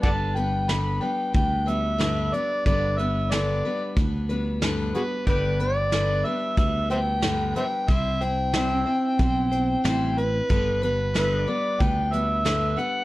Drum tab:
HH |xxx-xxxx|xxx-xxxx|xxx-xxxx|xxx-xxxx|
SD |--o---o-|--o---o-|--o---o-|--o---o-|
BD |o---o---|o---o---|o---o---|o---o---|

HH |xxx-xxxx|
SD |--o---o-|
BD |o---o---|